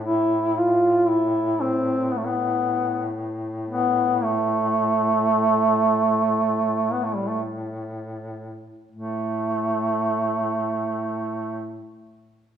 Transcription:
Already playing: A2
0.05 E4
0.58 F4
1.09 E4
1.61 C4
2.12 B3
2.17 A3
2.26 B3
3.68 B3
4.24 A3
6.92 B3
7.04 A3
7.16 G3
7.29 A3
8.92 A2 A3

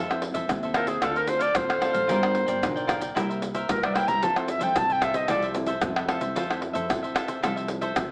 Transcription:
Already playing: F2 F3
0.09 C4 E4 A4 C5 E5, pandeiro, tamborim, shaker
0.22 muted cavaquinho stroke, pandeiro
0.34 F2 A4 C5 E5, pandeiro, shaker
0.49 D#2 C3 C4 E4 A4, pandeiro, tamborim, shaker, surdo
0.63 A4 C5 E5, pandeiro, shaker
0.74 F4 A4 A#4 C5 E5, pandeiro, tamborim, shaker
0.87 G#4 A4 C5 E5, pandeiro, shaker
1.02 D2 D3 C4 D4 F4 A4 C5 F5, pandeiro, tamborim, shaker, surdo
1.15 A4 A#4 C5 F5, pandeiro, shaker
1.27 C4 F4 A4 C5, muted cavaquinho stroke, pandeiro, shaker
1.39 A4 C5 D5 F5, pandeiro, shaker
1.55 D2 A2 C4 F4 A4 C5, pandeiro, tamborim, shaker, surdo
1.69 A4 C5 F5, pandeiro, tamborim, shaker
1.81 C4 D4 F4 A4 C5 F5, pandeiro, tamborim
1.93 A1 A4 C5 F5, pandeiro, shaker
2.07 G1 G3 D4 F4 A#4 D5 G5, pandeiro, shaker, surdo
2.22 D4 F4 A#4 D5 G5, pandeiro, tamborim, shaker
2.35 muted cavaquinho stroke, pandeiro
2.46 G1 A#4 D5 G5, pandeiro, shaker
2.62 B1 D3 D4 F4 A#4, pandeiro, tamborim, shaker, surdo
2.76 A#4 D5 G5, pandeiro, shaker
2.87 F4 A#4 D5 G5, pandeiro, tamborim, shaker, surdo
3.00 A#4 D5 G5, pandeiro, shaker
3.15 C2 C3 G3 A#3 E4 A#4 C5 E5, pandeiro, tamborim, shaker, surdo
3.29 A#4 C5 E5, pandeiro, shaker
3.42 muted cavaquinho stroke, pandeiro, shaker
3.54 A#4 C5 E5, pandeiro, shaker
3.69 C2 G2 G3 A#3 E4 A#4, pandeiro, tamborim, shaker, surdo
3.83 A#4 C5 D5 E5, pandeiro, tamborim, shaker
3.95 G3 A#3 E4 A#4 C5 E5 G5, pandeiro, tamborim
4.07 C2 A#4 C5 E5 A#5, pandeiro, shaker
4.22 F2 F3 C4 E4 F4 A4 C5 E5 A5, pandeiro, shaker, surdo
4.36 C4 E4 A4 C5 E5, pandeiro, tamborim, shaker
4.47 E5, muted cavaquinho stroke, pandeiro, shaker
4.59 F2 A4 C5 E5 G5, pandeiro, shaker
4.76 C2 C3 C4 E4 A4 A5, pandeiro, tamborim, shaker, surdo
4.89 A4 C5 E5 G5, pandeiro, shaker
5.01 F4 A4 C5 E5, pandeiro, tamborim, shaker, surdo
5.14 A4 C5 D#5 E5, pandeiro, shaker
5.28 C2 F3 C4 E4 F4 A4 C5 D5 E5, pandeiro, tamborim, shaker, surdo
5.42 A4 C5 E5, pandeiro, shaker
5.55 C4 E4 A4, muted cavaquinho stroke, pandeiro, shaker
5.66 A4 C5 E5, pandeiro, shaker
5.82 F2 C3 C4 E4 A4, pandeiro, tamborim, shaker, surdo
5.96 A4 C5 E5, pandeiro, tamborim, shaker
6.08 C4 E4 F4 A4 C5 E5, pandeiro, tamborim
6.21 C2 A4 C5 E5, pandeiro, shaker
6.36 F2 F3 F4 A4 C5 E5, pandeiro, shaker, surdo
6.49 C4 E4 A4 C5 E5, pandeiro, tamborim, shaker
6.61 muted cavaquinho stroke, pandeiro
6.73 F2 A4 C5 E5, pandeiro, shaker
6.89 C2 C3 C4 E4 A4, pandeiro, tamborim, shaker, surdo
7.03 A4 C5 E5, pandeiro, shaker
7.15 F4 A4 C5 E5, pandeiro, tamborim, shaker
7.28 A4 C5 E5, pandeiro, shaker
7.42 C2 F3 C4 E4 F4 A4 C5 E5, pandeiro, tamborim, shaker, surdo
7.56 A4 C5 E5, pandeiro, shaker
7.68 muted cavaquinho stroke, pandeiro, shaker
7.81 A4 C5 E5, pandeiro, shaker
7.96 D2 C3 C4 E4 A4, pandeiro, tamborim, shaker, surdo

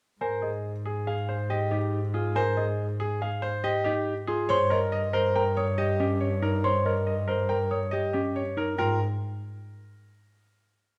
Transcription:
0.21 G#2 A#4 C5 G#5
0.42 G#4 D#5
0.86 G#4
1.07 G#4 F5
1.29 C5
1.50 G4 D#5
1.71 D#4 G4 D#5
2.14 F4 G#4
2.35 A#4 C5 G#5
2.57 G#4 D#5
3.00 G#4
3.22 G#4 F5
3.42 C5
3.64 G4 D#5
3.84 D#4 G4 D#5
4.27 F4 G#4
4.49 G2 C5 C#5 C6
4.70 A#4 D#5
4.92 D#5
5.13 A#4 C5
5.36 A#4 G5 A#5
5.57 C#5 D#6
5.78 G4 D#5
6.00 C#4 G4 D#5
6.20 C#5
6.42 D#4 A#4
6.64 C5 C#5 C6
6.85 A#4 D#5
7.07 D#5
7.28 A#4 C5
7.49 A#4 G5 A#5
7.71 C#5 D#6
7.91 G4 D#5
8.13 C#4 G4 D#5
8.36 C#5
8.57 D#4 A#4
8.78 G#2 F4 A#4 G5

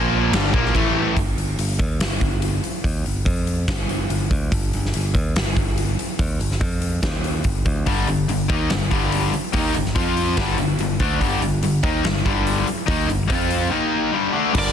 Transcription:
Already playing: A#1 A#2 F3 A#3
0.31 G1 G2 D3 G3, snare, crash
0.53 A#1 A#2 F3 A#3, kick
0.65 snare
0.74 A1 A2 E3 A3, kick, crash
1.17 G1, kick, open hi-hat
1.36 G1, open hi-hat
1.58 G1, open hi-hat
1.79 D#2, kick, open hi-hat
1.99 G1, snare, open hi-hat
2.21 G1, kick, open hi-hat
2.42 open hi-hat
2.63 muted picked electric bass stroke, open hi-hat
2.84 D#2, kick, open hi-hat
3.04 G1, open hi-hat
3.25 F2, kick, open hi-hat
3.47 open hi-hat
3.68 G1, kick, snare, open hi-hat
3.89 G1, open hi-hat
4.10 G1, open hi-hat
4.31 D2, kick, open hi-hat
4.52 G1, kick, open hi-hat
4.73 G1, open hi-hat
4.85 snare
4.94 G1, open hi-hat
5.14 D#2, kick, open hi-hat
5.36 G1, snare, open hi-hat
5.56 G1, kick, open hi-hat
5.78 open hi-hat
5.99 muted picked electric bass stroke, open hi-hat
6.19 D#2, kick, open hi-hat
6.39 G1, open hi-hat
6.51 snare
6.61 F2, kick, open hi-hat
6.82 open hi-hat
7.02 D#2, kick, snare, open hi-hat
7.24 open hi-hat
7.44 G1, kick, open hi-hat
7.65 D2, kick, open hi-hat
7.86 G1 G2 D3 G3, kick, open hi-hat
8.07 G1 G2 D3, open hi-hat
8.28 G1 G2 D3, open hi-hat
8.48 D#2 D#3 A#3 D#4, kick, open hi-hat
8.70 G1 G2 D3, snare, open hi-hat
8.90 G1 G2 D3 G3, kick, open hi-hat
9.12 open hi-hat
9.33 muted distorted electric guitar stroke, muted picked electric bass stroke, muted overdriven electric guitar stroke, open hi-hat
9.53 D#2 D#3 A#3 D#4, kick, open hi-hat
9.74 G1 G2 D3, open hi-hat
9.86 snare
9.95 F2 F3 C4 F4, kick, open hi-hat
10.17 open hi-hat
10.37 G1 G2 D3 G3, kick, snare, open hi-hat
10.58 G1 G2 D3, open hi-hat
10.79 G1 G2 D3, open hi-hat
10.99 D2 D3 A3 D4, kick, open hi-hat
11.20 G1 G2 D3 G3, kick, open hi-hat
11.40 G1 G2 D3, open hi-hat
11.61 G1 G2 D3, open hi-hat
11.83 D#2 D#3 A#3 D#4, kick, open hi-hat
12.03 G1 G2 D3, snare, open hi-hat
12.25 G1 G2 D3 G3, kick, open hi-hat
12.47 open hi-hat
12.67 muted distorted electric guitar stroke, muted overdriven electric guitar stroke, open hi-hat
12.86 D#2 D#3 A#3 D#4, kick, open hi-hat
13.07 G1 G2 D3, open hi-hat
13.27 F2 F3 C4 F4, kick, open hi-hat
13.51 open hi-hat
13.70 D#3 A#3 D#4
14.12 G2 D3 G3
14.33 D3 A3 D4
14.52 G1 G2 D3 G3, kick, crash
14.57 A#3 D4 A#4 D5

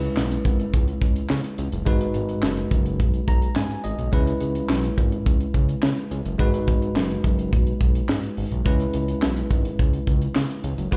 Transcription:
Already playing: G#3 C#4 E4 B4
0.03 closed hi-hat
0.17 B1, snare, clap
0.31 closed hi-hat
0.45 G#1, kick, closed hi-hat
0.60 closed hi-hat
0.74 C#2, kick, closed hi-hat
0.88 closed hi-hat
1.02 C#2, kick, closed hi-hat
1.16 closed hi-hat
1.29 C#3, snare, clap
1.44 closed hi-hat
1.58 C#2, closed hi-hat
1.72 F#1, closed hi-hat
1.86 G#1 G#3 D#4 F#4 B4, kick, closed hi-hat
2.01 closed hi-hat
2.14 G#1, closed hi-hat
2.29 closed hi-hat
2.43 F#1, snare, clap
2.57 closed hi-hat
2.71 F#1, kick, closed hi-hat
2.86 closed hi-hat
3.00 B1, kick, closed hi-hat
3.14 closed hi-hat
3.28 B1 A#5, kick, closed hi-hat
3.42 closed hi-hat
3.56 G#2 G#5, snare, clap
3.70 closed hi-hat
3.84 G#1 D#5, closed hi-hat
3.99 B1, closed hi-hat
4.12 C#2 G#3 C#4 E4 B4, kick, closed hi-hat
4.27 closed hi-hat
4.41 C#2, closed hi-hat
4.55 closed hi-hat
4.69 B1, snare, clap
4.84 closed hi-hat
4.98 G#1, kick, closed hi-hat
5.12 closed hi-hat
5.26 C#2, kick, closed hi-hat
5.41 closed hi-hat
5.54 C#2, kick, closed hi-hat
5.69 closed hi-hat
5.83 C#3, snare, clap
5.97 closed hi-hat
6.11 C#2, closed hi-hat
6.25 F#1, closed hi-hat
6.38 G#1 G#3 D#4 F#4 B4, kick, closed hi-hat
6.54 closed hi-hat
6.67 G#1, kick, closed hi-hat
6.82 closed hi-hat
6.96 F#1, snare, clap
7.10 closed hi-hat
7.24 F#1, kick, closed hi-hat
7.39 closed hi-hat
7.53 B1, kick, closed hi-hat
7.67 closed hi-hat
7.81 B1, kick, closed hi-hat
7.95 closed hi-hat
8.09 G#2, snare, clap
8.23 closed hi-hat
8.37 G#1, open hi-hat
8.52 B1, closed hi-hat
8.65 C#2 G#3 C#4 E4 B4, kick, closed hi-hat
8.80 closed hi-hat
8.94 C#2, closed hi-hat
9.08 closed hi-hat
9.22 B1, snare, clap
9.36 closed hi-hat
9.51 G#1, kick, closed hi-hat
9.65 closed hi-hat
9.79 C#2, kick, closed hi-hat
9.93 closed hi-hat
10.07 C#2, kick, closed hi-hat
10.22 closed hi-hat
10.35 C#3, snare, clap
10.50 closed hi-hat
10.64 C#2, closed hi-hat
10.78 F#1, closed hi-hat
10.91 G#1 G#3 D#4 F#4 B4, kick, closed hi-hat

